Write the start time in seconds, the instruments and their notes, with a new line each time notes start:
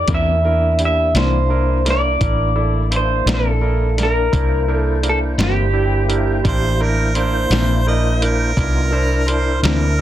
0.08 fingered electric bass E2, clean electric guitar C3 E3 A#3 D4, tonewheel organ A#3 D4 E4, upright piano D4 E4 A#4, kick, closed hi-hat
0.15 clean electric guitar E5
0.45 upright piano D4 E4 A#4
0.79 upright piano D4 E4 G4, closed hi-hat
0.85 clean electric guitar E5
1.14 fingered electric bass C2, clean electric guitar C3 E3 A#3 D4 C5, upright piano D4 E4 A#4, snare, closed hi-hat
1.50 upright piano D4 E4 A#4
1.85 upright piano D4 E4 A#4, snare, closed hi-hat
1.90 clean electric guitar D5
2.21 fingered electric bass A1, upright piano D4 E4 A#4, kick, closed hi-hat
2.56 upright piano D4 E4 A4
2.91 upright piano D4 E4 C5, closed hi-hat
2.96 clean electric guitar C5
3.26 fingered electric bass A#1, clean electric guitar C3 E3 A#3 D4, upright piano D4 E4 A#4, snare, closed hi-hat
3.34 clean electric guitar A4
3.61 upright piano D4 E4 A#4
3.98 upright piano D4 E4 A#4, snare, closed hi-hat
4.03 clean electric guitar A#4
4.32 fingered electric bass C2, tonewheel organ A#3 E4 C5, upright piano D4 E4 A#4, kick, closed hi-hat
4.68 upright piano D4 E4 A#4
4.74 clean electric guitar A4
5.03 upright piano D4 E4 A#4, closed hi-hat
5.09 clean electric guitar A4
5.38 fingered electric bass G1, clean electric guitar C3 E3 A#3 D4, upright piano D4 E4 C5, snare, closed hi-hat
5.43 clean electric guitar G4
5.73 upright piano D4 E4 G4
6.09 upright piano D4 E4 A#4, closed hi-hat
6.44 fingered electric bass A1, upright piano D4 E4 A#4, kick, closed hi-hat
6.48 harmonica C5
6.80 upright piano D4 E4 A#4, harmonica A#4
7.15 upright piano D4 E4 A#4, harmonica C5, closed hi-hat
7.50 fingered electric bass A#1, clean electric guitar C3 E3 A#3 D4, upright piano D4 E4 A#4, snare, closed hi-hat
7.87 upright piano D4 E4 A#4, harmonica D#5
8.22 upright piano D4 E4 A#4, harmonica A#4, closed hi-hat
8.57 fingered electric bass C2, tonewheel organ B3 D#4 F4, upright piano D4 E4 A#4, kick, closed hi-hat
8.91 tonewheel organ D4 E4 A#4, upright piano D4 E4 C5
9.28 upright piano D4 E4 A#4, harmonica C5, closed hi-hat
9.63 fingered electric bass D2, clean electric guitar C3 E3 A#3 D4, upright piano D4 E4 C5, harmonica A#4, snare, closed hi-hat